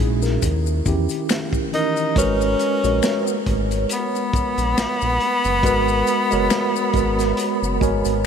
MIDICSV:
0, 0, Header, 1, 5, 480
1, 0, Start_track
1, 0, Key_signature, 5, "minor"
1, 0, Tempo, 869565
1, 1191, Time_signature, 4, 2, 24, 8
1, 4561, End_track
2, 0, Start_track
2, 0, Title_t, "Tine electric piano"
2, 0, Program_c, 0, 4
2, 0, Control_c, 0, 64, 127
2, 0, Note_on_c, 0, 46, 80
2, 0, Note_on_c, 0, 56, 74
2, 0, Note_on_c, 0, 61, 47
2, 0, Note_on_c, 0, 63, 56
2, 0, Note_on_c, 0, 64, 88
2, 0, Note_on_c, 0, 66, 57
2, 0, Note_on_c, 0, 68, 69
2, 119, Note_off_c, 0, 68, 0
2, 121, Note_off_c, 0, 63, 0
2, 126, Note_on_c, 0, 70, 62
2, 130, Note_off_c, 0, 64, 0
2, 130, Note_on_c, 0, 64, 53
2, 238, Control_c, 0, 64, 0
2, 240, Note_off_c, 0, 46, 0
2, 240, Note_off_c, 0, 66, 0
2, 242, Note_off_c, 0, 56, 0
2, 242, Note_off_c, 0, 61, 0
2, 347, Control_c, 0, 64, 127
2, 353, Note_off_c, 0, 70, 0
2, 355, Note_off_c, 0, 64, 0
2, 471, Note_on_c, 0, 51, 81
2, 475, Note_on_c, 0, 61, 75
2, 481, Note_on_c, 0, 64, 75
2, 486, Note_on_c, 0, 67, 84
2, 882, Note_off_c, 0, 51, 0
2, 884, Note_off_c, 0, 61, 0
2, 887, Note_off_c, 0, 64, 0
2, 890, Note_off_c, 0, 67, 0
2, 950, Note_on_c, 0, 51, 66
2, 954, Note_on_c, 0, 61, 65
2, 958, Note_on_c, 0, 52, 68
2, 964, Note_on_c, 0, 70, 77
2, 1156, Note_off_c, 0, 51, 0
2, 1158, Note_off_c, 0, 61, 0
2, 1160, Note_off_c, 0, 52, 0
2, 1163, Note_off_c, 0, 70, 0
2, 1190, Note_on_c, 0, 56, 94
2, 1196, Note_on_c, 0, 66, 74
2, 1198, Control_c, 0, 64, 0
2, 1202, Note_on_c, 0, 70, 82
2, 1207, Note_on_c, 0, 71, 96
2, 1292, Control_c, 0, 64, 127
2, 1499, Note_off_c, 0, 56, 0
2, 1502, Note_off_c, 0, 66, 0
2, 1505, Note_off_c, 0, 70, 0
2, 1508, Note_off_c, 0, 71, 0
2, 1564, Note_on_c, 0, 56, 74
2, 1571, Note_on_c, 0, 66, 63
2, 1577, Note_on_c, 0, 70, 59
2, 1580, Note_on_c, 0, 73, 73
2, 2360, Note_off_c, 0, 56, 0
2, 2363, Note_off_c, 0, 66, 0
2, 2366, Note_off_c, 0, 70, 0
2, 2368, Note_off_c, 0, 73, 0
2, 3106, Note_on_c, 0, 56, 101
2, 3113, Note_on_c, 0, 66, 102
2, 3116, Note_on_c, 0, 70, 86
2, 3123, Note_on_c, 0, 71, 112
2, 3417, Note_off_c, 0, 56, 0
2, 3421, Note_off_c, 0, 66, 0
2, 3422, Note_off_c, 0, 70, 0
2, 3426, Note_off_c, 0, 71, 0
2, 3480, Note_on_c, 0, 56, 90
2, 3485, Note_on_c, 0, 66, 79
2, 3491, Note_on_c, 0, 70, 73
2, 3495, Note_on_c, 0, 73, 85
2, 3777, Note_off_c, 0, 56, 0
2, 3780, Note_off_c, 0, 66, 0
2, 3783, Note_off_c, 0, 70, 0
2, 3785, Note_off_c, 0, 73, 0
2, 3826, Note_on_c, 0, 56, 80
2, 3831, Note_on_c, 0, 66, 70
2, 3836, Note_on_c, 0, 70, 63
2, 3843, Note_on_c, 0, 71, 76
2, 4240, Note_off_c, 0, 56, 0
2, 4242, Note_off_c, 0, 66, 0
2, 4245, Note_off_c, 0, 70, 0
2, 4248, Note_off_c, 0, 71, 0
2, 4307, Note_on_c, 0, 56, 83
2, 4313, Note_on_c, 0, 66, 72
2, 4316, Note_on_c, 0, 80, 63
2, 4317, Note_on_c, 0, 70, 74
2, 4323, Note_on_c, 0, 73, 91
2, 4537, Note_off_c, 0, 80, 0
2, 4561, Note_off_c, 0, 56, 0
2, 4561, Note_off_c, 0, 66, 0
2, 4561, Note_off_c, 0, 70, 0
2, 4561, Note_off_c, 0, 73, 0
2, 4561, End_track
3, 0, Start_track
3, 0, Title_t, "Tenor saxophone"
3, 0, Program_c, 1, 66
3, 964, Note_on_c, 1, 63, 98
3, 1181, Note_off_c, 1, 63, 0
3, 1204, Note_on_c, 1, 61, 110
3, 1895, Note_off_c, 1, 61, 0
3, 2169, Note_on_c, 1, 59, 113
3, 4538, Note_off_c, 1, 59, 0
3, 4561, End_track
4, 0, Start_track
4, 0, Title_t, "Analog synth bass"
4, 0, Program_c, 2, 38
4, 0, Note_on_c, 2, 34, 86
4, 211, Note_off_c, 2, 34, 0
4, 238, Note_on_c, 2, 39, 99
4, 452, Note_off_c, 2, 39, 0
4, 477, Note_on_c, 2, 40, 84
4, 595, Note_off_c, 2, 40, 0
4, 1196, Note_on_c, 2, 32, 90
4, 1411, Note_off_c, 2, 32, 0
4, 1567, Note_on_c, 2, 34, 92
4, 1662, Note_off_c, 2, 34, 0
4, 1913, Note_on_c, 2, 32, 87
4, 2130, Note_off_c, 2, 32, 0
4, 2396, Note_on_c, 2, 34, 47
4, 2448, Note_off_c, 2, 34, 0
4, 2527, Note_on_c, 2, 34, 72
4, 2622, Note_off_c, 2, 34, 0
4, 2638, Note_on_c, 2, 34, 45
4, 2689, Note_off_c, 2, 34, 0
4, 2771, Note_on_c, 2, 34, 73
4, 2865, Note_off_c, 2, 34, 0
4, 3007, Note_on_c, 2, 30, 80
4, 3103, Note_off_c, 2, 30, 0
4, 3111, Note_on_c, 2, 32, 112
4, 3329, Note_off_c, 2, 32, 0
4, 3491, Note_on_c, 2, 30, 78
4, 3585, Note_off_c, 2, 30, 0
4, 3831, Note_on_c, 2, 32, 91
4, 4049, Note_off_c, 2, 32, 0
4, 4209, Note_on_c, 2, 30, 85
4, 4303, Note_off_c, 2, 30, 0
4, 4315, Note_on_c, 2, 32, 80
4, 4434, Note_off_c, 2, 32, 0
4, 4447, Note_on_c, 2, 32, 75
4, 4561, Note_off_c, 2, 32, 0
4, 4561, End_track
5, 0, Start_track
5, 0, Title_t, "Drums"
5, 123, Note_on_c, 9, 82, 45
5, 131, Note_on_c, 9, 42, 43
5, 135, Note_on_c, 9, 38, 32
5, 178, Note_off_c, 9, 82, 0
5, 186, Note_off_c, 9, 42, 0
5, 190, Note_off_c, 9, 38, 0
5, 233, Note_on_c, 9, 82, 66
5, 234, Note_on_c, 9, 36, 84
5, 235, Note_on_c, 9, 42, 87
5, 288, Note_off_c, 9, 82, 0
5, 290, Note_off_c, 9, 36, 0
5, 290, Note_off_c, 9, 42, 0
5, 367, Note_on_c, 9, 82, 44
5, 422, Note_off_c, 9, 82, 0
5, 474, Note_on_c, 9, 36, 82
5, 474, Note_on_c, 9, 82, 43
5, 479, Note_on_c, 9, 42, 51
5, 529, Note_off_c, 9, 36, 0
5, 529, Note_off_c, 9, 82, 0
5, 535, Note_off_c, 9, 42, 0
5, 602, Note_on_c, 9, 82, 45
5, 612, Note_on_c, 9, 42, 47
5, 657, Note_off_c, 9, 82, 0
5, 667, Note_off_c, 9, 42, 0
5, 714, Note_on_c, 9, 26, 63
5, 714, Note_on_c, 9, 82, 63
5, 719, Note_on_c, 9, 42, 73
5, 721, Note_on_c, 9, 38, 110
5, 769, Note_off_c, 9, 26, 0
5, 769, Note_off_c, 9, 82, 0
5, 774, Note_off_c, 9, 42, 0
5, 776, Note_off_c, 9, 38, 0
5, 843, Note_on_c, 9, 36, 86
5, 849, Note_on_c, 9, 82, 39
5, 898, Note_off_c, 9, 36, 0
5, 905, Note_off_c, 9, 82, 0
5, 957, Note_on_c, 9, 42, 68
5, 1013, Note_off_c, 9, 42, 0
5, 1085, Note_on_c, 9, 82, 40
5, 1087, Note_on_c, 9, 42, 39
5, 1140, Note_off_c, 9, 82, 0
5, 1142, Note_off_c, 9, 42, 0
5, 1192, Note_on_c, 9, 36, 110
5, 1195, Note_on_c, 9, 42, 87
5, 1208, Note_on_c, 9, 82, 69
5, 1248, Note_off_c, 9, 36, 0
5, 1251, Note_off_c, 9, 42, 0
5, 1263, Note_off_c, 9, 82, 0
5, 1329, Note_on_c, 9, 42, 34
5, 1332, Note_on_c, 9, 82, 45
5, 1385, Note_off_c, 9, 42, 0
5, 1387, Note_off_c, 9, 82, 0
5, 1431, Note_on_c, 9, 42, 66
5, 1437, Note_on_c, 9, 82, 51
5, 1487, Note_off_c, 9, 42, 0
5, 1492, Note_off_c, 9, 82, 0
5, 1567, Note_on_c, 9, 42, 45
5, 1569, Note_on_c, 9, 82, 47
5, 1622, Note_off_c, 9, 42, 0
5, 1624, Note_off_c, 9, 82, 0
5, 1672, Note_on_c, 9, 26, 67
5, 1672, Note_on_c, 9, 82, 68
5, 1675, Note_on_c, 9, 42, 77
5, 1677, Note_on_c, 9, 38, 109
5, 1727, Note_off_c, 9, 26, 0
5, 1727, Note_off_c, 9, 82, 0
5, 1731, Note_off_c, 9, 42, 0
5, 1732, Note_off_c, 9, 38, 0
5, 1807, Note_on_c, 9, 82, 55
5, 1862, Note_off_c, 9, 82, 0
5, 1912, Note_on_c, 9, 36, 87
5, 1912, Note_on_c, 9, 42, 72
5, 1967, Note_off_c, 9, 42, 0
5, 1968, Note_off_c, 9, 36, 0
5, 2047, Note_on_c, 9, 42, 46
5, 2051, Note_on_c, 9, 82, 45
5, 2103, Note_off_c, 9, 42, 0
5, 2106, Note_off_c, 9, 82, 0
5, 2149, Note_on_c, 9, 42, 93
5, 2157, Note_on_c, 9, 82, 64
5, 2205, Note_off_c, 9, 42, 0
5, 2212, Note_off_c, 9, 82, 0
5, 2290, Note_on_c, 9, 42, 30
5, 2295, Note_on_c, 9, 82, 45
5, 2345, Note_off_c, 9, 42, 0
5, 2351, Note_off_c, 9, 82, 0
5, 2393, Note_on_c, 9, 36, 95
5, 2395, Note_on_c, 9, 42, 49
5, 2405, Note_on_c, 9, 82, 45
5, 2448, Note_off_c, 9, 36, 0
5, 2450, Note_off_c, 9, 42, 0
5, 2460, Note_off_c, 9, 82, 0
5, 2527, Note_on_c, 9, 42, 47
5, 2530, Note_on_c, 9, 82, 46
5, 2582, Note_off_c, 9, 42, 0
5, 2585, Note_off_c, 9, 82, 0
5, 2636, Note_on_c, 9, 42, 69
5, 2637, Note_on_c, 9, 26, 69
5, 2637, Note_on_c, 9, 38, 112
5, 2637, Note_on_c, 9, 82, 63
5, 2691, Note_off_c, 9, 42, 0
5, 2692, Note_off_c, 9, 38, 0
5, 2693, Note_off_c, 9, 26, 0
5, 2693, Note_off_c, 9, 82, 0
5, 2767, Note_on_c, 9, 82, 41
5, 2771, Note_on_c, 9, 42, 30
5, 2822, Note_off_c, 9, 82, 0
5, 2827, Note_off_c, 9, 42, 0
5, 2872, Note_on_c, 9, 42, 75
5, 2927, Note_off_c, 9, 42, 0
5, 3002, Note_on_c, 9, 42, 44
5, 3006, Note_on_c, 9, 82, 45
5, 3057, Note_off_c, 9, 42, 0
5, 3061, Note_off_c, 9, 82, 0
5, 3109, Note_on_c, 9, 36, 105
5, 3111, Note_on_c, 9, 42, 88
5, 3125, Note_on_c, 9, 82, 64
5, 3165, Note_off_c, 9, 36, 0
5, 3166, Note_off_c, 9, 42, 0
5, 3180, Note_off_c, 9, 82, 0
5, 3248, Note_on_c, 9, 82, 43
5, 3303, Note_off_c, 9, 82, 0
5, 3351, Note_on_c, 9, 42, 62
5, 3351, Note_on_c, 9, 82, 50
5, 3406, Note_off_c, 9, 42, 0
5, 3406, Note_off_c, 9, 82, 0
5, 3482, Note_on_c, 9, 42, 44
5, 3486, Note_on_c, 9, 82, 45
5, 3537, Note_off_c, 9, 42, 0
5, 3541, Note_off_c, 9, 82, 0
5, 3590, Note_on_c, 9, 26, 61
5, 3590, Note_on_c, 9, 82, 64
5, 3593, Note_on_c, 9, 42, 78
5, 3594, Note_on_c, 9, 38, 104
5, 3645, Note_off_c, 9, 26, 0
5, 3645, Note_off_c, 9, 82, 0
5, 3648, Note_off_c, 9, 42, 0
5, 3649, Note_off_c, 9, 38, 0
5, 3730, Note_on_c, 9, 42, 27
5, 3731, Note_on_c, 9, 82, 52
5, 3786, Note_off_c, 9, 42, 0
5, 3786, Note_off_c, 9, 82, 0
5, 3827, Note_on_c, 9, 42, 72
5, 3829, Note_on_c, 9, 36, 92
5, 3845, Note_on_c, 9, 82, 37
5, 3883, Note_off_c, 9, 42, 0
5, 3885, Note_off_c, 9, 36, 0
5, 3900, Note_off_c, 9, 82, 0
5, 3967, Note_on_c, 9, 42, 43
5, 3971, Note_on_c, 9, 38, 31
5, 3973, Note_on_c, 9, 82, 45
5, 4022, Note_off_c, 9, 42, 0
5, 4026, Note_off_c, 9, 38, 0
5, 4028, Note_off_c, 9, 82, 0
5, 4069, Note_on_c, 9, 42, 87
5, 4080, Note_on_c, 9, 82, 60
5, 4124, Note_off_c, 9, 42, 0
5, 4136, Note_off_c, 9, 82, 0
5, 4215, Note_on_c, 9, 82, 45
5, 4270, Note_off_c, 9, 82, 0
5, 4312, Note_on_c, 9, 36, 92
5, 4318, Note_on_c, 9, 42, 52
5, 4321, Note_on_c, 9, 82, 46
5, 4368, Note_off_c, 9, 36, 0
5, 4373, Note_off_c, 9, 42, 0
5, 4376, Note_off_c, 9, 82, 0
5, 4442, Note_on_c, 9, 82, 52
5, 4449, Note_on_c, 9, 42, 50
5, 4498, Note_off_c, 9, 82, 0
5, 4504, Note_off_c, 9, 42, 0
5, 4561, End_track
0, 0, End_of_file